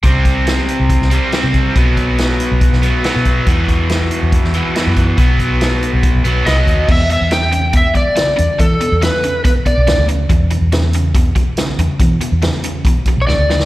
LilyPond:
<<
  \new Staff \with { instrumentName = "Electric slide guitar" } { \time 4/4 \key b \phrygian \tempo 4 = 141 r1 | r1 | r1 | r2. dis''4 |
\key e \minor e''8 e''8 g''4 e''8 d''4. | a'4 b'4 b'8 d''4 r8 | r1 | r2 \tuplet 3/2 { r4 r16 cis''16 } d''4 | }
  \new Staff \with { instrumentName = "Overdriven electric guitar" } { \clef bass \time 4/4 \key b \phrygian <c g c'>2~ <c g c'>8 <c g c'>8 <c g c'>4 | <b, fis b>2~ <b, fis b>8 <b, fis b>8 <b, fis b>4 | <e, b, e>2~ <e, b, e>8 <e, b, e>8 <e, b, e>4 | <b, fis b>2~ <b, fis b>8 <b, fis b>8 <b, fis b>4 |
\key e \minor <e, b,>8 <e, b,>8 <e, cis>8 <e, cis>8 <e, b,>8 <e, b,>8 <e, cis>8 <e, cis>8 | <e, b,>8 <e, b,>8 <e, cis>8 <e, cis>8 <e, b,>8 <e, b,>8 <e, cis>8 <e, cis>8 | <e, b,>8 <e, b,>8 <e, cis>8 <e, cis>8 <e, b,>8 <e, b,>8 <e, cis>8 <e, cis>8 | <e, b,>8 <e, b,>8 <e, cis>8 <e, cis>8 <e, b,>8 <e, b,>8 <e, cis>8 <e, cis>8 | }
  \new Staff \with { instrumentName = "Fingered electric bass" } { \clef bass \time 4/4 \key b \phrygian c,4.~ c,16 c,8 c,8 r8 c8. | b,,4.~ b,,16 b,,8 b,,8 r8 b,8. | e,4.~ e,16 e,8 e,8 r8 fis,8. | b,,4.~ b,,16 b,,8 b,,16 b,,8 c,8 dis,8 |
\key e \minor e,8. e,2 r8. e,16 r16 | e8 r16 e,8 r4. b,,16 d,16 d,8. | e,8. e,2 r8. e,16 r16 | e8 r16 e,8 r4. b,,16 d,16 d,8. | }
  \new DrumStaff \with { instrumentName = "Drums" } \drummode { \time 4/4 <hh bd>8 <hh bd>8 <hh sn>8 hh8 <hh bd>16 sn16 hh8 <hh sn>8 <hh bd>8 | <hh bd>8 <hh bd>8 <hh sn>8 hh8 <hh bd>16 sn16 hh8 <hh sn>8 <hh bd>8 | <hh bd>8 <hh bd>8 <hh sn>8 hh8 <hh bd>16 sn16 hh8 <hh sn>8 <hh bd>8 | <hh bd>8 <hh bd>8 <hh sn>8 hh8 <hh bd>8 hh8 <hh sn>8 <hh bd>8 |
<cymc bd>8 hh8 <hh sn>8 hh8 <hh bd>8 <hh bd>8 <hh sn>8 hh8 | <hh bd>8 hh8 <hh sn>8 hh8 <hh bd>8 <hh bd>8 <hh sn>8 hh8 | <hh bd>8 hh8 <hh sn>8 hh8 <hh bd>8 <hh bd>8 <hh sn>8 hh8 | <hh bd>8 hh8 <hh sn>8 hh8 <hh bd>8 <hh bd>8 sn8 sn16 sn16 | }
>>